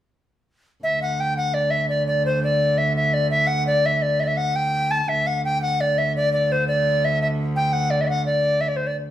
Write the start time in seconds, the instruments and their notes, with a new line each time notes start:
0.83 viola da gamba D2, recorder E5
1.02 recorder F#5
1.20 recorder G5
1.37 recorder F#5
1.54 recorder D5
1.71 recorder E5
1.89 recorder D5
2.07 recorder D5
2.26 recorder C5
2.44 recorder D5
2.78 recorder E5
2.96 recorder E5
3.14 recorder D5
3.31 recorder E5
3.47 recorder F#5
3.67 recorder D5
3.86 recorder E5
4.02 recorder D5
4.20 recorder D5 E5
4.27 recorder E5
4.37 recorder F#5
4.56 recorder G5
4.91 recorder A5
5.09 viola da gamba D2, recorder E5
5.27 recorder F#5
5.45 recorder G5
5.62 recorder F#5
5.81 recorder D5
5.98 recorder E5
6.16 recorder D5
6.33 recorder D5
6.52 recorder C5
6.68 recorder D5
7.05 recorder E5
7.22 recorder E5
7.56 recorder G5
7.73 recorder F#5
7.90 recorder D5
8.01 recorder D5 E5
8.08 recorder F#5
8.26 recorder D5
8.61 recorder E5
8.68 recorder D5
8.76 recorder C5
8.87 recorder D5